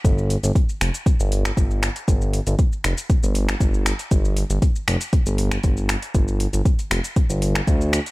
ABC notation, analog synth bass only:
X:1
M:4/4
L:1/16
Q:1/4=118
K:Cdor
V:1 name="Analog synth bass" clef=bass
G,,,3 G,,, z2 F,,, z2 G,,,3 G,,,3 z | G,,,3 G,,, z2 F,,, z2 G,,,3 G,,,3 z | G,,,3 G,,, z2 F,,, z2 G,,,3 G,,,3 z | G,,,3 G,,, z2 F,,, z2 G,,,3 D,,3 z |]